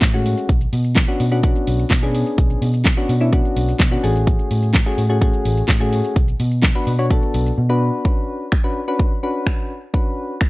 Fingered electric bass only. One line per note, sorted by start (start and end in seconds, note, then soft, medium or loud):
0.02 0.34 A2 loud
0.49 0.65 B1 loud
0.73 1.05 B2 loud
1.20 1.52 B2 medium
1.67 1.83 B1 medium
1.91 2.23 B2 loud
2.38 2.54 B1 loud
2.62 2.93 B2 loud
3.09 3.41 B2 medium
3.56 3.72 B1 medium
3.80 3.96 B2 loud
4.04 4.35 A1 loud
4.51 4.83 A2 medium
4.98 5.30 A2 medium
5.45 5.61 A1 medium
5.69 6.00 A2 loud
6.16 6.32 B1 loud
6.40 6.71 B2 medium
6.87 7.19 B2 medium
7.34 7.50 B1 medium
7.58 7.90 B2 loud